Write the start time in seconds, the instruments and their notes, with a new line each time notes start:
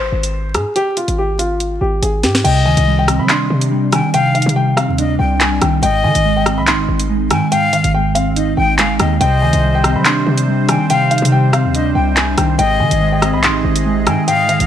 Already playing: 808-style bass G#1, grand piano C5
0.12 808-style bass G#1
0.23 closed hi-hat
0.54 808-style bass G#2, grand piano G#4, cross-stick, closed hi-hat
0.76 grand piano G4, closed hi-hat
0.97 grand piano F4, closed hi-hat
1.08 808-style bass G#1, closed hi-hat
1.18 grand piano G4
1.39 grand piano F4, closed hi-hat
1.60 closed hi-hat
1.81 808-style bass G#1, grand piano G4
2.02 808-style bass G#1, grand piano G#4, closed hi-hat
2.23 808-style bass G#2, grand piano G4, snare, closed hi-hat
2.35 snare
2.44 808-style bass C2, clean electric guitar C3, flute D#5, grand piano G5, closed hi-hat, crash
2.66 808-style bass D2, clean electric guitar D#3, grand piano G#5
2.77 808-style bass C2, closed hi-hat
2.87 clean electric guitar G3
2.99 grand piano G5
3.08 clean electric guitar C4, cross-stick, closed hi-hat
3.19 808-style bass G3, grand piano B5
3.29 clean electric guitar D4, grand piano C6, clap, closed hi-hat
3.50 808-style bass C3
3.61 closed hi-hat
3.72 clean electric guitar G3
3.92 clean electric guitar D#3, flute G5, grand piano G#5, cross-stick, closed hi-hat
4.14 clean electric guitar C3, flute F5, grand piano G5, closed hi-hat
4.35 clean electric guitar D#4, grand piano F5, closed hi-hat
4.42 closed hi-hat
4.46 808-style bass C3, closed hi-hat
4.56 clean electric guitar G3, grand piano G5
4.77 clean electric guitar C4, grand piano F5, cross-stick, closed hi-hat
4.88 808-style bass D2
4.98 clean electric guitar D4, flute D#5, closed hi-hat
5.19 808-style bass C2, grand piano G5, flute G5
5.40 clean electric guitar G3, grand piano G#5, clap, closed hi-hat
5.61 808-style bass C2, clean electric guitar D#3, grand piano G5, cross-stick, closed hi-hat
5.83 808-style bass G#1, clean electric guitar G#2, flute D#5, grand piano G5, closed hi-hat
6.04 clean electric guitar D#3, 808-style bass D#3, grand piano G#5
6.15 808-style bass G#1, closed hi-hat
6.25 clean electric guitar G#3
6.37 grand piano G5
6.46 clean electric guitar C4, cross-stick, closed hi-hat
6.57 808-style bass B1, grand piano B5
6.67 clean electric guitar D#4, grand piano C6, clap, closed hi-hat
6.73 808-style bass G#1
6.88 808-style bass G#1
7.00 closed hi-hat
7.09 clean electric guitar G#3
7.30 808-style bass G#2, clean electric guitar D#3, flute G5, grand piano G#5, cross-stick, closed hi-hat
7.51 clean electric guitar G#2, flute F5, grand piano G5, closed hi-hat
7.73 clean electric guitar D#3, grand piano F5, closed hi-hat
7.84 808-style bass G#1, closed hi-hat
7.94 clean electric guitar G#3, grand piano G5
8.15 clean electric guitar C4, grand piano F5, closed hi-hat
8.36 clean electric guitar D#4, flute D#5, closed hi-hat
8.57 808-style bass G#1, grand piano G5, flute G5
8.78 808-style bass G1, clean electric guitar G#3, flute F5, grand piano G#5, clap, closed hi-hat
8.90 808-style bass G#1
9.00 808-style bass D#2, clean electric guitar D#3, flute D#5, grand piano G5, cross-stick, closed hi-hat
9.20 808-style bass C2, clean electric guitar C3, accordion C3 G3 C4 C5, flute D#5, grand piano G5, closed hi-hat
9.42 808-style bass D2, clean electric guitar D#3, grand piano G#5
9.53 808-style bass C2, closed hi-hat
9.63 clean electric guitar G3
9.75 grand piano G5
9.84 clean electric guitar C4, cross-stick, closed hi-hat
9.95 808-style bass G3, grand piano B5
10.05 clean electric guitar D4, grand piano C6, clap, closed hi-hat
10.26 808-style bass C3
10.38 closed hi-hat
10.48 clean electric guitar G3
10.69 clean electric guitar D#3, flute G5, grand piano G#5, cross-stick, closed hi-hat
10.90 clean electric guitar C3, flute F5, grand piano G5, closed hi-hat
11.11 clean electric guitar D#4, grand piano F5, closed hi-hat
11.18 closed hi-hat
11.22 808-style bass C3, closed hi-hat
11.32 clean electric guitar G3, grand piano G5
11.53 clean electric guitar C4, grand piano F5, cross-stick, closed hi-hat
11.64 808-style bass D2
11.74 clean electric guitar D4, flute D#5, closed hi-hat
11.95 808-style bass C2, grand piano G5, flute G5
12.17 clean electric guitar G3, grand piano G#5, clap, closed hi-hat
12.37 808-style bass C2, clean electric guitar D#3, grand piano G5, cross-stick, closed hi-hat
12.59 808-style bass G#1, clean electric guitar G#2, accordion G#4 D#5, flute D#5, grand piano G5, closed hi-hat
12.79 clean electric guitar D#3, 808-style bass D#3, grand piano G#5
12.91 808-style bass G#1, closed hi-hat
13.01 clean electric guitar G#3
13.12 grand piano G5
13.22 clean electric guitar C4, cross-stick, closed hi-hat
13.33 808-style bass B1, grand piano B5
13.43 clean electric guitar D#4, grand piano C6, clap, closed hi-hat
13.49 808-style bass G#1
13.64 808-style bass G#1
13.76 closed hi-hat
13.85 clean electric guitar G#3
14.07 808-style bass G#2, clean electric guitar D#3, flute G5, grand piano G#5, cross-stick, closed hi-hat
14.27 clean electric guitar G#2, flute F5, grand piano G5, closed hi-hat
14.49 clean electric guitar D#3, grand piano F5, closed hi-hat
14.60 808-style bass G#1, closed hi-hat